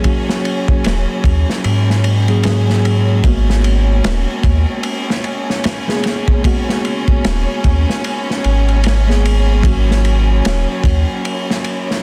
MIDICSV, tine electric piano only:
0, 0, Header, 1, 2, 480
1, 0, Start_track
1, 0, Key_signature, 5, "minor"
1, 0, Tempo, 800000
1, 26, Time_signature, 4, 2, 24, 8
1, 7216, End_track
2, 0, Start_track
2, 0, Title_t, "Tine electric piano"
2, 0, Program_c, 0, 4
2, 0, Control_c, 0, 64, 127
2, 0, Note_on_c, 0, 54, 75
2, 0, Note_on_c, 0, 58, 66
2, 0, Note_on_c, 0, 61, 68
2, 0, Note_on_c, 0, 68, 88
2, 13, Note_off_c, 0, 54, 0
2, 13, Note_on_c, 0, 54, 80
2, 21, Note_off_c, 0, 58, 0
2, 21, Note_on_c, 0, 58, 73
2, 29, Note_off_c, 0, 61, 0
2, 29, Note_on_c, 0, 61, 74
2, 36, Note_on_c, 0, 66, 89
2, 1334, Note_off_c, 0, 54, 0
2, 1338, Note_off_c, 0, 58, 0
2, 1342, Note_off_c, 0, 61, 0
2, 1346, Note_off_c, 0, 66, 0
2, 1367, Note_on_c, 0, 54, 80
2, 1369, Note_on_c, 0, 58, 77
2, 1376, Note_on_c, 0, 61, 71
2, 1378, Note_off_c, 0, 68, 0
2, 1378, Note_on_c, 0, 68, 88
2, 1442, Note_off_c, 0, 54, 0
2, 1443, Note_off_c, 0, 58, 0
2, 1446, Note_off_c, 0, 61, 0
2, 1447, Note_off_c, 0, 68, 0
2, 1465, Note_on_c, 0, 54, 75
2, 1470, Note_on_c, 0, 58, 66
2, 1472, Note_on_c, 0, 61, 68
2, 1477, Note_on_c, 0, 68, 81
2, 1922, Note_off_c, 0, 54, 0
2, 1925, Note_off_c, 0, 58, 0
2, 1926, Note_off_c, 0, 61, 0
2, 1929, Note_off_c, 0, 68, 0
2, 1940, Note_on_c, 0, 56, 82
2, 1948, Note_on_c, 0, 58, 69
2, 1955, Control_c, 0, 64, 0
2, 1956, Note_on_c, 0, 59, 75
2, 1965, Note_on_c, 0, 66, 85
2, 2076, Control_c, 0, 64, 127
2, 3498, Note_off_c, 0, 56, 0
2, 3502, Note_off_c, 0, 58, 0
2, 3506, Note_off_c, 0, 59, 0
2, 3510, Note_off_c, 0, 66, 0
2, 3524, Note_on_c, 0, 56, 73
2, 3528, Note_on_c, 0, 58, 68
2, 3532, Note_on_c, 0, 59, 72
2, 3535, Note_on_c, 0, 68, 83
2, 3840, Note_off_c, 0, 56, 0
2, 3842, Note_off_c, 0, 58, 0
2, 3844, Note_off_c, 0, 59, 0
2, 3846, Note_off_c, 0, 68, 0
2, 3853, Note_on_c, 0, 56, 81
2, 3862, Note_on_c, 0, 58, 70
2, 3870, Note_on_c, 0, 59, 76
2, 3879, Note_on_c, 0, 66, 89
2, 5414, Note_off_c, 0, 56, 0
2, 5419, Note_off_c, 0, 58, 0
2, 5423, Note_off_c, 0, 59, 0
2, 5427, Note_off_c, 0, 66, 0
2, 5444, Note_on_c, 0, 56, 77
2, 5447, Note_on_c, 0, 58, 73
2, 5451, Note_on_c, 0, 59, 72
2, 5455, Note_on_c, 0, 68, 89
2, 5760, Note_off_c, 0, 56, 0
2, 5762, Note_off_c, 0, 58, 0
2, 5764, Note_off_c, 0, 59, 0
2, 5766, Note_off_c, 0, 68, 0
2, 5771, Note_on_c, 0, 54, 79
2, 5779, Note_on_c, 0, 58, 72
2, 5787, Note_on_c, 0, 61, 77
2, 5793, Control_c, 0, 64, 0
2, 5797, Note_on_c, 0, 66, 84
2, 5911, Control_c, 0, 64, 127
2, 7216, Note_off_c, 0, 54, 0
2, 7216, Note_off_c, 0, 58, 0
2, 7216, Note_off_c, 0, 61, 0
2, 7216, Note_off_c, 0, 66, 0
2, 7216, End_track
0, 0, End_of_file